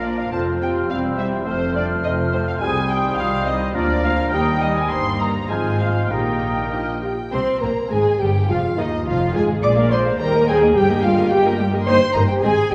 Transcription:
Already playing: double bass section A#1, cello section A#2, bassoon F3, clarinet F4, oboe A#4, flute section F6
0.03 viola section F3 A#3, french horn section D4, violin section D4 F4 D5
0.18 french horn section F4, violin section F5
0.32 double bass section F1, cello section F2, bassoon F3, viola section F3 C4, violin section C4 F4 A5, clarinet F4, french horn section A4, oboe C5, flute section F6
0.61 viola section F3 C4, violin section C4 F4 G5, french horn section G4
0.89 double bass section E1, cello section E2, viola section G3 C4, bassoon G3, violin section C4 F5, clarinet C4, french horn section F4, flute section E6
1.18 viola section G3 C4, violin section C4 E5, french horn section E4
1.46 double bass section F1, cello section F2, viola section F3 A3, bassoon A3, violin section C4 C5, french horn section C4, flute section F6
1.75 viola section F3 A3, violin section C4 D5, french horn section D4
2.04 double bass section F1, cello section F2, french horn section D#4, violin section D#5
2.32 viola section F3 A3, violin section C4 C5, french horn section C4
2.48 french horn section F4, violin section F5
2.60 cello section C2, double bass section C2, bassoon G3, clarinet C4, french horn section G#4, oboe C5, violin section G#5, flute section D#6
2.89 viola section D#3 G3, violin section C4 G5, french horn section G4
3.18 cello section C2, double bass section C2, french horn section F4, violin section F5
3.46 viola section D#3 G3, violin section C4 D#5, french horn section D#4
3.75 double bass section D2, cello section D2, viola section F3 A#3, bassoon F3, violin section A#3 F4 D5, clarinet D4, french horn section D4, oboe A#4, flute section F6
4.03 viola section F3 A#3, violin section A#3 F4 F5, french horn section F4
4.32 double bass section D#2, cello section D#2, viola section G3 A#3, bassoon G3, violin section A#3 D#4 G5, clarinet D#4, french horn section G4, flute section D#6
4.61 viola section G3 A#3, violin section A#3 D#4 D#5, french horn section D#4
4.77 french horn section G#4, violin section G#5
4.90 double bass section G1, cello section G2, viola section G3 A#3, violin section A#3 D#4 C6, french horn section C5
5.20 french horn section A#4, violin section A#5
5.49 double bass section G#1, cello section G#2, viola section F3, bassoon G#3, violin section C4 F4 G#5, clarinet C4, french horn section G#4, oboe C5, flute section F6
5.80 french horn section F4, violin section F5
6.10 double bass section A#1, cello section A#2, viola section D#3 A#3, bassoon A#3, violin section D#4 G4 G5, clarinet D#4, french horn section G4, oboe A#4, flute section D#6
6.70 viola section F3 A#3, clarinet D4, french horn section D#4, violin section G4 D#5, flute section F6
7.02 violin section F4 G5, french horn section G4
7.32 double bass section C2, cello section C3, viola section C4, french horn section C5, violin section C5 C6
7.62 double bass section A#1, cello section A#2, viola section A#3, french horn section A#4, violin section A#4 A#5
7.90 double bass section G#1, cello section G#2, viola section G#3, french horn section G#4, violin section G#4 G#5
8.18 double bass section G1, cello section G2, viola section G3, french horn section G4, violin section G4 G5
8.47 double bass section F1, cello section F2, viola section F3, french horn section F4, violin section F4 F5
8.77 double bass section D#2, cello section D#2, viola section D#3, french horn section D#4, violin section D#4 D#5
9.06 double bass section F1, cello section F2, viola section F3, violin section F4 F5, french horn section F4
9.34 double bass section G#1, cello section G#2, viola section G#3, violin section G#4 G#5, french horn section G#4
9.63 double bass section A#1, cello section A#2, viola section G#3 G#4, french horn section D5, violin section D5 D6
9.77 viola section A#3 A#4, violin section F5
9.90 viola section G#3 G#4, french horn section C5, violin section D5 C6
10.06 viola section A#3 A#4, violin section F5
10.19 double bass section D#2, cello section D#2, viola section G3 G4, french horn section A#4, violin section G5 A#5
10.34 viola section A#3 A#4, violin section D#5
10.47 viola section G3 G4, french horn section G#4, violin section G5 G#5
10.62 viola section A#3 A#4, violin section D#5
10.75 double bass section G1, cello section G2, viola section G3 G4, french horn section G4, violin section G5
10.90 viola section A#3 A#4, violin section D#5
11.03 viola section G3 G4, french horn section F4, violin section F5 G5
11.18 viola section A#3 A#4, violin section D#5
11.31 viola section G3 G4, french horn section G4, violin section G5
11.45 viola section A#3 A#4, violin section D#5
11.59 viola section G3 G4, violin section G5
11.73 viola section A#3 A#4, violin section D#5
11.86 double bass section G1, cello section G2, viola section A#3 D#4, french horn section C5, violin section D#5 C6
12.14 double bass section G1, cello section G2, viola section A#3 D#4, french horn section A#4, violin section D#5 A#5
12.28 french horn section G4, violin section G5
12.41 double bass section G#1, cello section G#2, viola section C4 G#4, french horn section G#4, violin section D#5 G#5
12.71 double bass section G#1, french horn section G4, violin section D#5

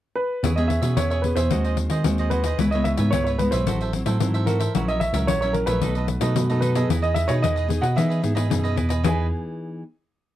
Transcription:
0.16 grand piano B4
0.43 tine electric piano E2, nylon-string guitar E3 B3 C#4 G#4, cavaquinho E4 G#4 C#5 E5, pandeiro
0.56 nylon-string guitar B3 C#4 G#4, cavaquinho G#4 C#5 E5, grand piano D#5, pandeiro
0.68 grand piano E5, pandeiro
0.82 tine electric piano B2, nylon-string guitar B3 C#4 G#4, cavaquinho G#4 C#5 E5, pandeiro
0.97 tine electric piano E2, nylon-string guitar B2, cavaquinho E4 G#4 C#5 E5, grand piano C#5, pandeiro
1.10 cavaquinho G#4 C#5 E5, grand piano C#5, pandeiro
1.22 nylon-string guitar B3 C#4 G#4, grand piano B4, muted cavaquinho stroke, pandeiro
1.36 tine electric piano E2, cavaquinho G#4 C#5 E5, grand piano C5, pandeiro
1.50 tine electric piano D#2, nylon-string guitar D#3 G#3 C4 F#4, cavaquinho F#4 G#4 C5 D#5, pandeiro
1.64 cavaquinho G#4 C5 D#5, pandeiro
1.77 muted cavaquinho stroke, pandeiro
1.90 tine electric piano D#3, cavaquinho G#4 C5 D#5, pandeiro
2.04 tine electric piano D#2, nylon-string guitar D#3 G#3 C4 F#4, pandeiro
2.18 cavaquinho G#4 C5 D#5, pandeiro
2.30 cavaquinho F#4 G#4 C5 D#5, grand piano B4, pandeiro
2.44 cavaquinho G#4 C5 D#5, pandeiro
2.59 tine electric piano C#2, nylon-string guitar C#3 G#3 B3 E4, cavaquinho E4 B4 C#5 E5, pandeiro
2.71 nylon-string guitar G#3 B3 E4, cavaquinho C#5 E5, grand piano D#5, pandeiro
2.75 cavaquinho B4
2.84 grand piano E5, pandeiro
2.97 tine electric piano G#2, nylon-string guitar G#3 B3 E4, cavaquinho B4 C#5 E5, pandeiro
3.11 tine electric piano C#2, nylon-string guitar G#2, cavaquinho E4 B4 C#5 E5, grand piano C#5, pandeiro
3.24 grand piano C#5, cavaquinho C#5 E5, pandeiro
3.29 cavaquinho B4
3.38 nylon-string guitar G#3 B3 E4, grand piano B4, muted cavaquinho stroke, pandeiro
3.51 tine electric piano B1, cavaquinho B4 C#5 E5, grand piano C5, pandeiro
3.67 tine electric piano A1, nylon-string guitar A2 F#3 C4 E4, cavaquinho F#4 A4 C5 E5, pandeiro
3.81 cavaquinho A4 C5 E5, pandeiro
3.93 nylon-string guitar F#3 C4 E4, muted cavaquinho stroke, pandeiro
4.06 tine electric piano A2, nylon-string guitar F#3 C4 E4, cavaquinho A4 C5 E5, pandeiro
4.20 tine electric piano G#2, nylon-string guitar E3 F#3 C4 E4, pandeiro
4.34 cavaquinho A4 C5 E5, pandeiro
4.46 cavaquinho F#4 A4 C5 E5, grand piano A#4, pandeiro
4.60 cavaquinho A4 C5 E5, pandeiro
4.75 tine electric piano A#1, nylon-string guitar A#2 F#3 C#4 E4, cavaquinho F#4 A#4 C#5 E5, pandeiro
4.88 cavaquinho A#4 C#5 E5, grand piano D#5, pandeiro
5.00 grand piano E5, pandeiro
5.13 tine electric piano C#2, nylon-string guitar F#3 C#4 E4, cavaquinho A#4 C#5 E5, pandeiro
5.27 tine electric piano A#1, nylon-string guitar A#2, cavaquinho F#4 A#4 C#5 E5, grand piano C#5, pandeiro
5.41 nylon-string guitar F#3 C#4 E4, cavaquinho A#4 C#5 E5, grand piano C#5, pandeiro
5.53 grand piano A#4, muted cavaquinho stroke, pandeiro
5.66 tine electric piano A#1, nylon-string guitar F#3 A3 D#4, cavaquinho A#4 C#5 E5, grand piano B4, pandeiro
5.81 tine electric piano B1, nylon-string guitar B2, cavaquinho D#4 A4 B4 D#5, pandeiro
5.95 cavaquinho A4 B4 D#5, pandeiro
6.08 muted cavaquinho stroke, pandeiro
6.21 tine electric piano B2, nylon-string guitar F#3 A3 D#4, cavaquinho A4 B4 D#5, pandeiro
6.36 nylon-string guitar F#2, tine electric piano B2, pandeiro
6.49 nylon-string guitar F#3 A3 D#4, cavaquinho A4 B4 D#5, pandeiro
6.61 cavaquinho D#4 A4 B4 D#5, grand piano B4, pandeiro
6.75 nylon-string guitar B3 D#4 G#4, cavaquinho A4 B4 D#5, pandeiro
6.89 tine electric piano E2, nylon-string guitar E3, cavaquinho E4 G#4 B4 D#5, pandeiro
7.02 cavaquinho G#4 B4 D#5, grand piano D#5, pandeiro
7.14 grand piano E5, pandeiro
7.28 tine electric piano B2, nylon-string guitar B3 D#4 G#4, cavaquinho G#4 B4 D#5, grand piano C#5, pandeiro
7.42 tine electric piano E2, nylon-string guitar B2, cavaquinho E4 G#4 B4 D#5, grand piano D#5, pandeiro
7.56 cavaquinho G#4 B4 D#5, pandeiro
7.68 nylon-string guitar B3 D#4 G#4, muted cavaquinho stroke, pandeiro
7.81 tine electric piano B2, cavaquinho G#4 B4 D#5, grand piano F#5, pandeiro
7.95 nylon-string guitar E3 B3 D#4 G#4, tine electric piano E3, cavaquinho E4 G#4 B4 D#5, grand piano E5, pandeiro
8.09 cavaquinho G#4 B4 D#5, pandeiro
8.22 tine electric piano G#2, nylon-string guitar B3 D#4 G#4, muted cavaquinho stroke, pandeiro
8.35 nylon-string guitar B3 D#4 G#4, cavaquinho G#4 B4 D#5, pandeiro
8.49 tine electric piano F#2, nylon-string guitar B2 B3 D#4 G#4, pandeiro
8.64 cavaquinho G#4 B4 D#5, pandeiro
8.76 tine electric piano E2, cavaquinho E4 G#4 B4 D#5, pandeiro
8.89 cavaquinho G#4 B4 D#5, pandeiro
9.03 tine electric piano E2, nylon-string guitar E3 B3 D#4 G#4, cavaquinho E4 G#4 B4 D#5, grand piano G#5, pandeiro

